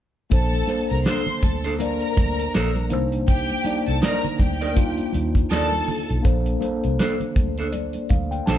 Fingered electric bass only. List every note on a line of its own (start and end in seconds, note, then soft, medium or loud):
0.32 0.62 A#1 loud
0.91 1.03 C2 medium
1.43 2.02 D2 medium
2.18 2.47 D2 medium
2.56 2.93 A#1 medium
2.93 3.51 C2 medium
3.88 4.00 C2 medium
4.40 4.99 D2 medium
5.15 5.44 D#2 medium
5.51 5.80 D#2 medium
6.11 6.22 B1 medium
6.25 6.55 A#1 loud
6.85 6.97 C2 medium
7.37 7.95 D2 medium
8.11 8.40 D2 medium
8.48 8.58 A#1 medium